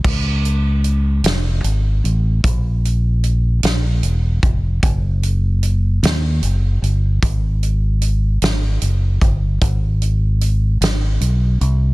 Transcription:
<<
  \new Staff \with { instrumentName = "Fingered electric bass" } { \clef bass \time 6/8 \key bes \minor \tempo 4. = 50 des,4. f,,8 aes,,8 a,,8 | bes,,4. bes,,8 fes,,8 f,,8 | ges,,4. ees,8 ges,,8 g,,8 | aes,,4. aes,,8 ges,,8 g,,8 |
aes,,4. aes,,8 ces,8 c,8 | }
  \new DrumStaff \with { instrumentName = "Drums" } \drummode { \time 6/8 <cymc bd>8 hh8 hh8 <hh sn>8 hh8 hh8 | <hh bd>8 hh8 hh8 <hh sn>8 hh8 <hh bd>8 | <hh bd>8 hh8 hh8 <hh sn>8 hh8 hh8 | <hh bd>8 hh8 hh8 <hh sn>8 hh8 <hh bd>8 |
<hh bd>8 hh8 hh8 <hh sn>8 hh8 hh8 | }
>>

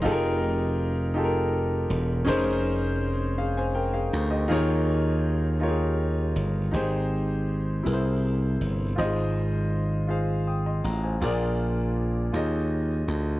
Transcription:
<<
  \new Staff \with { instrumentName = "Grand piano" } { \time 6/8 \key f \minor \tempo 4. = 54 << { r2. | r4. <aes' f''>16 <c'' aes''>16 <bes' g''>16 <aes' f''>8 <g' ees''>16~ | <g' ees''>16 r2 r8. | r2. |
r2 <g'' ees'''>16 <ees'' c'''>16 bes''16 <c'' aes''>16~ | <c'' aes''>16 r2 r8. | } \\ { <ees' f' g' aes' a' bes'>4. <ees' f' g' aes' a' bes'>4. | <des' ees' aes' bes' c''>4. r4. | <ees ees' f' aes' bes' des''>4. <ees' f' g' aes' bes' des''>4. | <aes, ees' g' aes' c''>4. <c e' aes' bes' ces'' c''>4. |
<aes, f' g' aes' c'' ees''>4. <f' aes' c'' f''>4. | <bes, f' aes' bes' d''>4. <ees' f' aes' des'' ees''>4. | } >> }
  \new Staff \with { instrumentName = "Slap bass" } { \clef bass \time 6/8 \key f \minor f,,2~ f,,8 fes,,8 | f,,2~ f,,8 d,8 | ees,2~ ees,8 g,,8 | aes,,4. c,4 g,,8 |
aes,,2~ aes,,8 a,,8 | bes,,4. ees,4 d,8 | }
>>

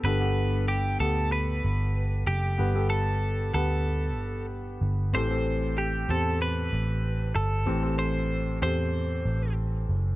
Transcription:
<<
  \new Staff \with { instrumentName = "Clean electric guitar" } { \time 4/4 \key g \major \tempo 4 = 94 b'4 g'8 a'8 b'4. g'8~ | g'8 a'4 a'4. r4 | c''4 g'8 a'8 b'4. a'8~ | a'8 c''4 c''4. r4 | }
  \new Staff \with { instrumentName = "Grand piano" } { \time 4/4 \key g \major <b g' a'>16 <b g' a'>4 r16 <b g' a'>4. r4 | <b g' b'>16 <b g' a'>4 r16 <b g' b'>4. r4 | <c' g' a'>16 <c' g' a'>4 r16 <c' g' a'>4. r4 | <c' g' a'>16 <c' g' a'>4 r16 <c' g' a'>4. r4 | }
  \new Staff \with { instrumentName = "Grand piano" } { \clef bass \time 4/4 \key g \major <g, d>4. r2 r8 | <g, d>4. r2 r8 | <a, e>4. r2 r8 | <a, e>4. r2 r8 | }
  \new Staff \with { instrumentName = "Picked electric bass" } { \clef bass \time 4/4 \key g \major g,,4. d,4 g,,4 fis,,8 | g,,4. d,4 g,,4 g,,8 | a,,4. e,4 a,,4 g,,8 | a,,4. e,4 a,,4 fis,,8 | }
>>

